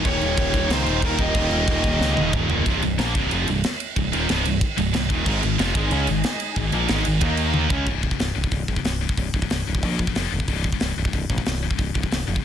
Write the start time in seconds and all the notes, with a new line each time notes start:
0.04 D#1 D#2 A#2 D#3 A#3 F4 G4 C#5, kick, crash
0.13 D#2 A#2
0.20 D#1 D#2 A#2, crash
0.28 D#2 A#2
0.35 D#1 D#2 A#2, kick, crash
0.42 D#2 A#2
0.51 D#1 D#2 A#2, kick, crash
0.59 D#2 A#2
0.66 C#2 D#2 A#2
0.70 D#2 A#2 D#4 C5, snare, crash
0.81 D#2 A#2
0.86 D#1 D#2 A#2 D#3, crash
0.95 D#2 A#2
1.02 D#1 D#2 A#2 D#3 D#4 A#4, kick, crash
1.11 D#2 A#2
1.19 D#1 D#2 A#2 G4 D#5, kick, crash
1.25 D#2 A#2
1.34 D#1 D#2 A#2 D#3, kick, crash
1.42 D#2 A#2
1.50 D#1 D#2 A#2, crash
1.58 D#2 A#2
1.65 D#1 D#2 A#2, kick, crash
1.72 D#2 A#2
1.81 D#1 D#2 A#2, kick, crash
1.88 D#2 A#2
1.96 D#2 A#2
2.00 C#2 D#2, snare
2.04 A#2
2.11 D#2 A#2
2.16 D#1 D#2 A#2 D#3, high tom
2.27 D#2 A#2
2.33 D#1 D#2 A#2 D#3, kick, mid tom
2.42 D#2 A#2
2.50 C#1 D#2 A#2, floor tom
2.58 D#2 A#2
2.65 C1 C2 G2 C3, kick, ride
2.82 C1 C2 G2, ride
2.98 A#1 A#2 F3 A#3, snare, ride
3.14 C1 C2 G2 C3, kick, ride
3.31 F1 F2 C3 F3, ride
3.47 C1 C2 G2, ride
3.64 snare, ride
3.80 ride
3.96 C1 C2 G2, kick, ride
4.12 D#1 D#2 A#2 D#3, ride
4.28 C1 C2 G2 C3, snare, ride
4.44 C1 C2 G2, ride
4.61 kick, ride
4.77 C1 C2 G2, ride
4.93 C1 C2 G2, snare, ride
5.09 D#1 D#2 A#2 D#3, kick, ride
5.26 G#1 G#2 D#3 G#3 D#4 D#5 G#5, kick, crash
5.43 G#1 G#2 D#3, ride
5.58 F1 F2 C3 F3, snare, ride
5.75 G#1 G#2 D#3 G#3, kick, ride
5.91 C#2 C#3 G#3 C#4, ride
6.07 G#1 G#2 D#3, ride
6.24 snare, ride
6.40 ride
6.56 G#1 G#2 D#3, kick, ride
6.72 A#1 A#2 F3 A#3, ride
6.88 G#1 G#2 D#3 G#3, snare, ride
7.05 G#1 G#2 D#3, ride
7.21 D#2 D#3 A#3 D#4 A#5, kick, ride
7.37 ride
7.54 high tom
7.69 C#2 C#3 G#3 C#4 G#5, kick
7.86 C1 C2 G2 C3, kick, crash
8.03 C2 G2, kick
8.11 C2 G2, kick
8.19 C1 C2 G2, snare, open hi-hat
8.35 C1 C2 G2
8.44 C2 G2, kick
8.51 C1 C2 G2, kick, open hi-hat
8.68 A#1 C2 G2, kick
8.76 C2 G2, kick
8.84 C1 C2 G2, snare, open hi-hat
9.01 C2 G2
9.09 C2 G2, kick
9.17 C1 C2 G2, kick, open hi-hat
9.34 C1 C2 G2, kick
9.42 C2 G2, kick
9.50 C1 C2 G2, snare, open hi-hat
9.67 C1 C2 G2
9.75 C2 G2, kick
9.83 A#1 A#2 F3 A#3, kick, open hi-hat
9.99 A#2 F3, kick
10.07 A#2 F3, kick
10.15 F1 F2 C3 F3, snare, open hi-hat
10.32 D#1 F2 C3
10.40 F2 C3, kick
10.48 C1 C2 G2 C3, kick, open hi-hat
10.64 C2 G2, kick
10.72 C2 G2, kick
10.80 C1 C2 G2, snare, open hi-hat
10.97 C1 C2 G2
11.05 C2 G2, kick
11.13 C1 C2 G2, kick, open hi-hat
11.30 A#1 C2 G2, kick
11.38 C2 G2, kick
11.46 C1 C2 G2, snare, open hi-hat
11.63 C2 G2
11.70 C2 G2, kick
11.78 C1 C2 G2, kick, open hi-hat
11.94 C1 C2 G2, kick
12.02 C2 G2, kick
12.11 C1 C2 G2, snare, open hi-hat
12.27 F1 C2 G2
12.35 C2 G2, kick